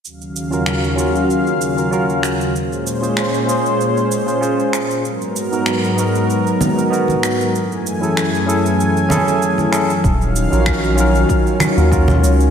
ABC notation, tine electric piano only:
X:1
M:4/4
L:1/16
Q:"Swing 16ths" 1/4=96
K:Ebm
V:1 name="Tine electric piano"
z3 [DFGB]3 [DFGB]4- [DFGB] [DFGB] [DFGB]4 | z3 [DFA=c]3 [DFAc]4- [DFAc] [DFAc] [DFAc]4 | z3 [CEGB]3 [CEGB]4- [CEGB] [CEGB] [CEGB]4 | z3 [D_FA=A]3 [DF_A=A]4 [DF_A=A]4 [DF_A=A] z |
z3 [DFGB]3 [DFGB]4- [DFGB] [DFGB] [DFGB]4 |]